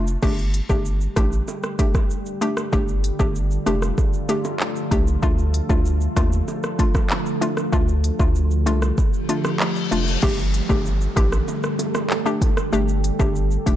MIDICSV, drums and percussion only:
0, 0, Header, 1, 2, 480
1, 0, Start_track
1, 0, Tempo, 625000
1, 176, Time_signature, 4, 2, 24, 8
1, 10569, End_track
2, 0, Start_track
2, 0, Title_t, "Drums"
2, 56, Note_on_c, 9, 82, 70
2, 133, Note_off_c, 9, 82, 0
2, 174, Note_on_c, 9, 49, 95
2, 174, Note_on_c, 9, 60, 72
2, 174, Note_on_c, 9, 82, 75
2, 175, Note_on_c, 9, 36, 112
2, 251, Note_off_c, 9, 49, 0
2, 251, Note_off_c, 9, 60, 0
2, 251, Note_off_c, 9, 82, 0
2, 252, Note_off_c, 9, 36, 0
2, 295, Note_on_c, 9, 82, 56
2, 371, Note_off_c, 9, 82, 0
2, 414, Note_on_c, 9, 42, 66
2, 414, Note_on_c, 9, 82, 48
2, 491, Note_off_c, 9, 42, 0
2, 491, Note_off_c, 9, 82, 0
2, 534, Note_on_c, 9, 36, 90
2, 534, Note_on_c, 9, 60, 75
2, 535, Note_on_c, 9, 82, 75
2, 611, Note_off_c, 9, 36, 0
2, 611, Note_off_c, 9, 60, 0
2, 612, Note_off_c, 9, 82, 0
2, 655, Note_on_c, 9, 82, 81
2, 732, Note_off_c, 9, 82, 0
2, 774, Note_on_c, 9, 82, 46
2, 851, Note_off_c, 9, 82, 0
2, 894, Note_on_c, 9, 37, 91
2, 895, Note_on_c, 9, 36, 92
2, 895, Note_on_c, 9, 42, 73
2, 895, Note_on_c, 9, 60, 46
2, 895, Note_on_c, 9, 61, 64
2, 895, Note_on_c, 9, 82, 53
2, 971, Note_off_c, 9, 37, 0
2, 972, Note_off_c, 9, 36, 0
2, 972, Note_off_c, 9, 42, 0
2, 972, Note_off_c, 9, 60, 0
2, 972, Note_off_c, 9, 61, 0
2, 972, Note_off_c, 9, 82, 0
2, 1017, Note_on_c, 9, 82, 75
2, 1094, Note_off_c, 9, 82, 0
2, 1136, Note_on_c, 9, 60, 70
2, 1136, Note_on_c, 9, 82, 82
2, 1213, Note_off_c, 9, 60, 0
2, 1213, Note_off_c, 9, 82, 0
2, 1254, Note_on_c, 9, 82, 53
2, 1257, Note_on_c, 9, 37, 90
2, 1331, Note_off_c, 9, 82, 0
2, 1333, Note_off_c, 9, 37, 0
2, 1375, Note_on_c, 9, 36, 97
2, 1375, Note_on_c, 9, 42, 78
2, 1375, Note_on_c, 9, 60, 73
2, 1375, Note_on_c, 9, 82, 58
2, 1452, Note_off_c, 9, 36, 0
2, 1452, Note_off_c, 9, 42, 0
2, 1452, Note_off_c, 9, 60, 0
2, 1452, Note_off_c, 9, 82, 0
2, 1495, Note_on_c, 9, 36, 96
2, 1495, Note_on_c, 9, 37, 91
2, 1495, Note_on_c, 9, 82, 63
2, 1497, Note_on_c, 9, 60, 81
2, 1571, Note_off_c, 9, 36, 0
2, 1571, Note_off_c, 9, 82, 0
2, 1572, Note_off_c, 9, 37, 0
2, 1573, Note_off_c, 9, 60, 0
2, 1615, Note_on_c, 9, 82, 65
2, 1692, Note_off_c, 9, 82, 0
2, 1735, Note_on_c, 9, 82, 55
2, 1812, Note_off_c, 9, 82, 0
2, 1855, Note_on_c, 9, 61, 67
2, 1856, Note_on_c, 9, 42, 77
2, 1856, Note_on_c, 9, 82, 55
2, 1932, Note_off_c, 9, 61, 0
2, 1933, Note_off_c, 9, 42, 0
2, 1933, Note_off_c, 9, 82, 0
2, 1973, Note_on_c, 9, 37, 97
2, 1976, Note_on_c, 9, 82, 70
2, 2050, Note_off_c, 9, 37, 0
2, 2053, Note_off_c, 9, 82, 0
2, 2094, Note_on_c, 9, 60, 72
2, 2095, Note_on_c, 9, 82, 73
2, 2096, Note_on_c, 9, 36, 111
2, 2171, Note_off_c, 9, 60, 0
2, 2171, Note_off_c, 9, 82, 0
2, 2173, Note_off_c, 9, 36, 0
2, 2215, Note_on_c, 9, 82, 54
2, 2291, Note_off_c, 9, 82, 0
2, 2334, Note_on_c, 9, 42, 69
2, 2334, Note_on_c, 9, 82, 47
2, 2411, Note_off_c, 9, 42, 0
2, 2411, Note_off_c, 9, 82, 0
2, 2454, Note_on_c, 9, 36, 90
2, 2454, Note_on_c, 9, 60, 76
2, 2456, Note_on_c, 9, 82, 77
2, 2531, Note_off_c, 9, 36, 0
2, 2531, Note_off_c, 9, 60, 0
2, 2532, Note_off_c, 9, 82, 0
2, 2576, Note_on_c, 9, 82, 79
2, 2653, Note_off_c, 9, 82, 0
2, 2695, Note_on_c, 9, 82, 48
2, 2772, Note_off_c, 9, 82, 0
2, 2814, Note_on_c, 9, 37, 84
2, 2815, Note_on_c, 9, 60, 48
2, 2815, Note_on_c, 9, 61, 67
2, 2816, Note_on_c, 9, 42, 76
2, 2816, Note_on_c, 9, 82, 55
2, 2891, Note_off_c, 9, 37, 0
2, 2892, Note_off_c, 9, 60, 0
2, 2892, Note_off_c, 9, 61, 0
2, 2893, Note_off_c, 9, 42, 0
2, 2893, Note_off_c, 9, 82, 0
2, 2936, Note_on_c, 9, 37, 89
2, 2937, Note_on_c, 9, 82, 77
2, 3012, Note_off_c, 9, 37, 0
2, 3013, Note_off_c, 9, 82, 0
2, 3056, Note_on_c, 9, 36, 91
2, 3056, Note_on_c, 9, 60, 67
2, 3056, Note_on_c, 9, 82, 83
2, 3133, Note_off_c, 9, 36, 0
2, 3133, Note_off_c, 9, 60, 0
2, 3133, Note_off_c, 9, 82, 0
2, 3175, Note_on_c, 9, 82, 54
2, 3252, Note_off_c, 9, 82, 0
2, 3294, Note_on_c, 9, 60, 72
2, 3295, Note_on_c, 9, 42, 78
2, 3295, Note_on_c, 9, 82, 55
2, 3371, Note_off_c, 9, 60, 0
2, 3372, Note_off_c, 9, 42, 0
2, 3372, Note_off_c, 9, 82, 0
2, 3414, Note_on_c, 9, 82, 67
2, 3416, Note_on_c, 9, 60, 77
2, 3491, Note_off_c, 9, 82, 0
2, 3493, Note_off_c, 9, 60, 0
2, 3533, Note_on_c, 9, 39, 103
2, 3535, Note_on_c, 9, 82, 67
2, 3610, Note_off_c, 9, 39, 0
2, 3612, Note_off_c, 9, 82, 0
2, 3655, Note_on_c, 9, 82, 53
2, 3732, Note_off_c, 9, 82, 0
2, 3774, Note_on_c, 9, 61, 68
2, 3775, Note_on_c, 9, 36, 97
2, 3776, Note_on_c, 9, 42, 78
2, 3776, Note_on_c, 9, 82, 57
2, 3851, Note_off_c, 9, 61, 0
2, 3852, Note_off_c, 9, 36, 0
2, 3853, Note_off_c, 9, 42, 0
2, 3853, Note_off_c, 9, 82, 0
2, 3896, Note_on_c, 9, 82, 68
2, 3973, Note_off_c, 9, 82, 0
2, 4014, Note_on_c, 9, 60, 75
2, 4015, Note_on_c, 9, 82, 73
2, 4016, Note_on_c, 9, 36, 106
2, 4091, Note_off_c, 9, 60, 0
2, 4092, Note_off_c, 9, 82, 0
2, 4093, Note_off_c, 9, 36, 0
2, 4135, Note_on_c, 9, 82, 53
2, 4212, Note_off_c, 9, 82, 0
2, 4255, Note_on_c, 9, 42, 69
2, 4255, Note_on_c, 9, 82, 49
2, 4332, Note_off_c, 9, 42, 0
2, 4332, Note_off_c, 9, 82, 0
2, 4375, Note_on_c, 9, 36, 91
2, 4375, Note_on_c, 9, 60, 79
2, 4376, Note_on_c, 9, 82, 78
2, 4451, Note_off_c, 9, 36, 0
2, 4452, Note_off_c, 9, 60, 0
2, 4453, Note_off_c, 9, 82, 0
2, 4496, Note_on_c, 9, 82, 78
2, 4573, Note_off_c, 9, 82, 0
2, 4614, Note_on_c, 9, 82, 48
2, 4691, Note_off_c, 9, 82, 0
2, 4735, Note_on_c, 9, 36, 93
2, 4735, Note_on_c, 9, 37, 89
2, 4735, Note_on_c, 9, 60, 51
2, 4735, Note_on_c, 9, 61, 69
2, 4736, Note_on_c, 9, 42, 74
2, 4736, Note_on_c, 9, 82, 53
2, 4812, Note_off_c, 9, 36, 0
2, 4812, Note_off_c, 9, 37, 0
2, 4812, Note_off_c, 9, 60, 0
2, 4812, Note_off_c, 9, 61, 0
2, 4813, Note_off_c, 9, 42, 0
2, 4813, Note_off_c, 9, 82, 0
2, 4857, Note_on_c, 9, 82, 77
2, 4934, Note_off_c, 9, 82, 0
2, 4976, Note_on_c, 9, 60, 71
2, 4977, Note_on_c, 9, 82, 85
2, 5053, Note_off_c, 9, 60, 0
2, 5053, Note_off_c, 9, 82, 0
2, 5095, Note_on_c, 9, 82, 54
2, 5098, Note_on_c, 9, 37, 92
2, 5172, Note_off_c, 9, 82, 0
2, 5175, Note_off_c, 9, 37, 0
2, 5215, Note_on_c, 9, 36, 97
2, 5216, Note_on_c, 9, 42, 80
2, 5216, Note_on_c, 9, 60, 72
2, 5216, Note_on_c, 9, 82, 54
2, 5292, Note_off_c, 9, 36, 0
2, 5292, Note_off_c, 9, 60, 0
2, 5293, Note_off_c, 9, 42, 0
2, 5293, Note_off_c, 9, 82, 0
2, 5335, Note_on_c, 9, 36, 96
2, 5335, Note_on_c, 9, 82, 69
2, 5336, Note_on_c, 9, 37, 94
2, 5336, Note_on_c, 9, 60, 81
2, 5412, Note_off_c, 9, 36, 0
2, 5412, Note_off_c, 9, 37, 0
2, 5412, Note_off_c, 9, 82, 0
2, 5413, Note_off_c, 9, 60, 0
2, 5454, Note_on_c, 9, 39, 94
2, 5456, Note_on_c, 9, 82, 67
2, 5531, Note_off_c, 9, 39, 0
2, 5533, Note_off_c, 9, 82, 0
2, 5576, Note_on_c, 9, 82, 55
2, 5653, Note_off_c, 9, 82, 0
2, 5695, Note_on_c, 9, 61, 69
2, 5697, Note_on_c, 9, 42, 78
2, 5697, Note_on_c, 9, 82, 57
2, 5772, Note_off_c, 9, 61, 0
2, 5774, Note_off_c, 9, 42, 0
2, 5774, Note_off_c, 9, 82, 0
2, 5814, Note_on_c, 9, 37, 94
2, 5817, Note_on_c, 9, 82, 74
2, 5891, Note_off_c, 9, 37, 0
2, 5894, Note_off_c, 9, 82, 0
2, 5935, Note_on_c, 9, 60, 73
2, 5936, Note_on_c, 9, 36, 110
2, 5936, Note_on_c, 9, 82, 74
2, 6012, Note_off_c, 9, 60, 0
2, 6012, Note_off_c, 9, 82, 0
2, 6013, Note_off_c, 9, 36, 0
2, 6055, Note_on_c, 9, 82, 56
2, 6132, Note_off_c, 9, 82, 0
2, 6175, Note_on_c, 9, 42, 70
2, 6175, Note_on_c, 9, 82, 47
2, 6252, Note_off_c, 9, 42, 0
2, 6252, Note_off_c, 9, 82, 0
2, 6294, Note_on_c, 9, 60, 77
2, 6295, Note_on_c, 9, 36, 92
2, 6295, Note_on_c, 9, 82, 79
2, 6371, Note_off_c, 9, 36, 0
2, 6371, Note_off_c, 9, 60, 0
2, 6372, Note_off_c, 9, 82, 0
2, 6416, Note_on_c, 9, 82, 78
2, 6493, Note_off_c, 9, 82, 0
2, 6534, Note_on_c, 9, 82, 48
2, 6611, Note_off_c, 9, 82, 0
2, 6655, Note_on_c, 9, 60, 49
2, 6655, Note_on_c, 9, 61, 67
2, 6656, Note_on_c, 9, 42, 78
2, 6656, Note_on_c, 9, 82, 54
2, 6732, Note_off_c, 9, 42, 0
2, 6732, Note_off_c, 9, 60, 0
2, 6732, Note_off_c, 9, 61, 0
2, 6732, Note_off_c, 9, 82, 0
2, 6775, Note_on_c, 9, 37, 88
2, 6776, Note_on_c, 9, 82, 75
2, 6852, Note_off_c, 9, 37, 0
2, 6853, Note_off_c, 9, 82, 0
2, 6896, Note_on_c, 9, 36, 93
2, 6896, Note_on_c, 9, 60, 68
2, 6896, Note_on_c, 9, 82, 84
2, 6973, Note_off_c, 9, 36, 0
2, 6973, Note_off_c, 9, 60, 0
2, 6973, Note_off_c, 9, 82, 0
2, 7015, Note_on_c, 9, 82, 54
2, 7091, Note_off_c, 9, 82, 0
2, 7135, Note_on_c, 9, 42, 79
2, 7135, Note_on_c, 9, 82, 56
2, 7136, Note_on_c, 9, 60, 73
2, 7212, Note_off_c, 9, 42, 0
2, 7212, Note_off_c, 9, 60, 0
2, 7212, Note_off_c, 9, 82, 0
2, 7254, Note_on_c, 9, 37, 95
2, 7254, Note_on_c, 9, 82, 67
2, 7256, Note_on_c, 9, 60, 79
2, 7331, Note_off_c, 9, 37, 0
2, 7331, Note_off_c, 9, 82, 0
2, 7333, Note_off_c, 9, 60, 0
2, 7373, Note_on_c, 9, 39, 100
2, 7375, Note_on_c, 9, 82, 66
2, 7450, Note_off_c, 9, 39, 0
2, 7452, Note_off_c, 9, 82, 0
2, 7495, Note_on_c, 9, 82, 53
2, 7572, Note_off_c, 9, 82, 0
2, 7615, Note_on_c, 9, 61, 68
2, 7617, Note_on_c, 9, 42, 77
2, 7617, Note_on_c, 9, 82, 54
2, 7692, Note_off_c, 9, 61, 0
2, 7694, Note_off_c, 9, 42, 0
2, 7694, Note_off_c, 9, 82, 0
2, 7737, Note_on_c, 9, 82, 71
2, 7813, Note_off_c, 9, 82, 0
2, 7855, Note_on_c, 9, 60, 78
2, 7856, Note_on_c, 9, 36, 112
2, 7856, Note_on_c, 9, 49, 103
2, 7856, Note_on_c, 9, 82, 75
2, 7932, Note_off_c, 9, 49, 0
2, 7932, Note_off_c, 9, 60, 0
2, 7932, Note_off_c, 9, 82, 0
2, 7933, Note_off_c, 9, 36, 0
2, 7975, Note_on_c, 9, 82, 59
2, 8052, Note_off_c, 9, 82, 0
2, 8095, Note_on_c, 9, 42, 69
2, 8095, Note_on_c, 9, 82, 52
2, 8172, Note_off_c, 9, 42, 0
2, 8172, Note_off_c, 9, 82, 0
2, 8214, Note_on_c, 9, 60, 77
2, 8215, Note_on_c, 9, 36, 91
2, 8217, Note_on_c, 9, 82, 75
2, 8291, Note_off_c, 9, 60, 0
2, 8292, Note_off_c, 9, 36, 0
2, 8293, Note_off_c, 9, 82, 0
2, 8337, Note_on_c, 9, 82, 78
2, 8414, Note_off_c, 9, 82, 0
2, 8455, Note_on_c, 9, 82, 51
2, 8532, Note_off_c, 9, 82, 0
2, 8575, Note_on_c, 9, 36, 99
2, 8575, Note_on_c, 9, 37, 92
2, 8575, Note_on_c, 9, 61, 69
2, 8577, Note_on_c, 9, 42, 79
2, 8577, Note_on_c, 9, 82, 56
2, 8652, Note_off_c, 9, 36, 0
2, 8652, Note_off_c, 9, 37, 0
2, 8652, Note_off_c, 9, 61, 0
2, 8654, Note_off_c, 9, 42, 0
2, 8654, Note_off_c, 9, 82, 0
2, 8697, Note_on_c, 9, 37, 91
2, 8698, Note_on_c, 9, 82, 82
2, 8774, Note_off_c, 9, 37, 0
2, 8775, Note_off_c, 9, 82, 0
2, 8816, Note_on_c, 9, 60, 73
2, 8817, Note_on_c, 9, 82, 82
2, 8893, Note_off_c, 9, 60, 0
2, 8894, Note_off_c, 9, 82, 0
2, 8935, Note_on_c, 9, 82, 57
2, 8938, Note_on_c, 9, 37, 94
2, 9012, Note_off_c, 9, 82, 0
2, 9015, Note_off_c, 9, 37, 0
2, 9054, Note_on_c, 9, 60, 77
2, 9056, Note_on_c, 9, 42, 78
2, 9056, Note_on_c, 9, 82, 57
2, 9131, Note_off_c, 9, 60, 0
2, 9133, Note_off_c, 9, 42, 0
2, 9133, Note_off_c, 9, 82, 0
2, 9175, Note_on_c, 9, 37, 97
2, 9175, Note_on_c, 9, 82, 69
2, 9176, Note_on_c, 9, 60, 81
2, 9252, Note_off_c, 9, 37, 0
2, 9252, Note_off_c, 9, 60, 0
2, 9252, Note_off_c, 9, 82, 0
2, 9294, Note_on_c, 9, 39, 101
2, 9297, Note_on_c, 9, 82, 68
2, 9371, Note_off_c, 9, 39, 0
2, 9373, Note_off_c, 9, 82, 0
2, 9416, Note_on_c, 9, 82, 56
2, 9493, Note_off_c, 9, 82, 0
2, 9535, Note_on_c, 9, 36, 103
2, 9535, Note_on_c, 9, 61, 71
2, 9537, Note_on_c, 9, 42, 77
2, 9537, Note_on_c, 9, 82, 58
2, 9612, Note_off_c, 9, 36, 0
2, 9612, Note_off_c, 9, 61, 0
2, 9614, Note_off_c, 9, 42, 0
2, 9614, Note_off_c, 9, 82, 0
2, 9654, Note_on_c, 9, 37, 96
2, 9657, Note_on_c, 9, 82, 73
2, 9731, Note_off_c, 9, 37, 0
2, 9734, Note_off_c, 9, 82, 0
2, 9775, Note_on_c, 9, 60, 74
2, 9776, Note_on_c, 9, 82, 74
2, 9852, Note_off_c, 9, 60, 0
2, 9853, Note_off_c, 9, 82, 0
2, 9896, Note_on_c, 9, 82, 54
2, 9973, Note_off_c, 9, 82, 0
2, 10016, Note_on_c, 9, 42, 69
2, 10016, Note_on_c, 9, 82, 50
2, 10092, Note_off_c, 9, 42, 0
2, 10092, Note_off_c, 9, 82, 0
2, 10135, Note_on_c, 9, 36, 95
2, 10135, Note_on_c, 9, 60, 78
2, 10136, Note_on_c, 9, 82, 81
2, 10212, Note_off_c, 9, 36, 0
2, 10212, Note_off_c, 9, 60, 0
2, 10213, Note_off_c, 9, 82, 0
2, 10257, Note_on_c, 9, 82, 80
2, 10334, Note_off_c, 9, 82, 0
2, 10375, Note_on_c, 9, 82, 47
2, 10452, Note_off_c, 9, 82, 0
2, 10495, Note_on_c, 9, 61, 67
2, 10496, Note_on_c, 9, 36, 94
2, 10497, Note_on_c, 9, 42, 79
2, 10497, Note_on_c, 9, 82, 58
2, 10569, Note_off_c, 9, 36, 0
2, 10569, Note_off_c, 9, 42, 0
2, 10569, Note_off_c, 9, 61, 0
2, 10569, Note_off_c, 9, 82, 0
2, 10569, End_track
0, 0, End_of_file